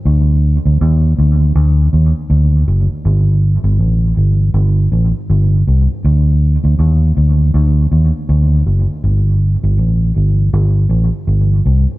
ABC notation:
X:1
M:4/4
L:1/16
Q:"Swing 16ths" 1/4=80
K:Cdor
V:1 name="Fingered electric bass" clef=bass
D,,3 D,, E,,2 D,,2 D,,2 E,, z D,,2 ^F,,, z | G,,,3 G,,, A,,,2 G,,,2 G,,,2 A,,, z G,,,2 C,, z | D,,3 D,, E,,2 D,,2 D,,2 E,, z D,,2 ^F,,, z | G,,,3 G,,, A,,,2 G,,,2 G,,,2 A,,, z G,,,2 C,, z |]